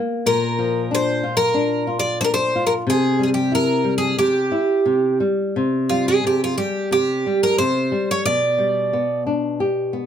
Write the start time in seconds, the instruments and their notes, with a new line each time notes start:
Already playing: nylon-string guitar A#3
0.26 nylon-string guitar A#2, twelve-string acoustic guitar A#4
0.59 nylon-string guitar F3
0.91 nylon-string guitar D4, twelve-string acoustic guitar C5
1.23 nylon-string guitar F4
1.37 twelve-string acoustic guitar A#4
1.54 nylon-string guitar D4
1.87 nylon-string guitar F4
1.99 twelve-string acoustic guitar D5
2.21 nylon-string guitar D4, twelve-string acoustic guitar A#4 C5
2.34 twelve-string acoustic guitar C5
2.56 nylon-string guitar F4
2.67 twelve-string acoustic guitar A#4
2.87 nylon-string guitar C3, twelve-string acoustic guitar G#4
3.19 nylon-string guitar G3
3.23 twelve-string acoustic guitar G#4
3.34 twelve-string acoustic guitar G4
3.52 nylon-string guitar E4, twelve-string acoustic guitar A#4
3.84 nylon-string guitar G3
3.98 twelve-string acoustic guitar G#4
4.18 nylon-string guitar C3, twelve-string acoustic guitar G4
4.52 nylon-string guitar E4
4.86 nylon-string guitar C3
5.20 nylon-string guitar G3
5.56 nylon-string guitar C3
5.89 nylon-string guitar G3, twelve-string acoustic guitar F4
6.08 twelve-string acoustic guitar G#4
6.24 nylon-string guitar C3, twelve-string acoustic guitar G4
6.44 twelve-string acoustic guitar F4
6.58 nylon-string guitar G3, twelve-string acoustic guitar G4
6.91 nylon-string guitar C3, twelve-string acoustic guitar G4
7.26 nylon-string guitar G3
7.43 twelve-string acoustic guitar A#4
7.58 nylon-string guitar C3, twelve-string acoustic guitar C5
7.92 nylon-string guitar G3
8.11 twelve-string acoustic guitar C#5
8.25 nylon-string guitar B2, twelve-string acoustic guitar D5
8.58 nylon-string guitar G3
8.93 nylon-string guitar B3
9.27 nylon-string guitar D4
9.60 nylon-string guitar G4
9.93 nylon-string guitar B3